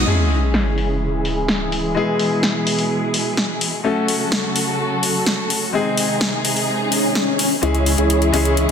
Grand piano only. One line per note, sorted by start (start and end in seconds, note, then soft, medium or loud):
0.06 1.92 G#3 medium
0.06 1.93 C#4 medium
0.06 1.93 E4 medium
0.06 1.94 G#4 medium
1.95 3.81 G#3 medium
1.95 3.82 B3 medium
1.95 3.82 E4 medium
1.95 3.83 G#4 medium
3.84 5.70 A3 medium
3.84 5.71 C#4 medium
3.84 5.71 F#4 medium
3.84 5.72 A4 medium
5.73 7.59 G#3 medium
5.73 7.60 C4 medium
5.73 7.60 D#4 medium
5.73 7.61 G#4 medium
7.62 8.30 G#3 medium
7.62 8.31 C#4 medium
7.62 8.31 E4 medium
7.62 8.31 G#4 medium
8.32 8.71 G#3 medium
8.32 8.71 C#4 medium
8.32 8.71 E4 medium
8.32 8.71 G#4 loud